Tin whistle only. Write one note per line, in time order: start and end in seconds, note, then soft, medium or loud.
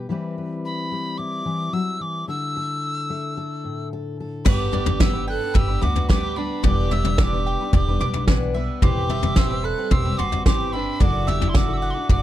0.65 1.19 B5 medium
1.18 1.75 D6 medium
1.73 2.03 E6 medium
2.02 2.28 D6 medium
2.29 3.88 E6 medium
4.48 5.03 D6 medium
5.02 5.28 E6 loud
5.29 5.57 F#6 loud
5.56 5.83 E6 loud
5.82 6.09 D6 medium
6.10 6.38 D6 loud
6.36 6.65 B5 medium
6.64 6.94 D6 medium
6.92 7.20 E6 loud
7.20 7.74 D6 medium
7.20 7.24 E6 medium
7.75 8.25 D6 medium
8.82 9.39 D6 medium
9.37 9.66 E6 medium
9.65 9.93 F#6 medium
9.91 10.19 E6 loud
10.18 10.46 D6 loud
10.46 10.74 D6 medium
10.72 11.03 B5 medium
11.02 11.29 D6 medium
11.28 11.51 E6 loud
11.49 11.58 C6 medium
11.56 11.74 D6 medium
11.73 11.91 D6 medium
11.73 11.78 E6 medium
11.90 11.95 C6 medium
11.90 12.11 D6 medium
12.11 12.22 D6 medium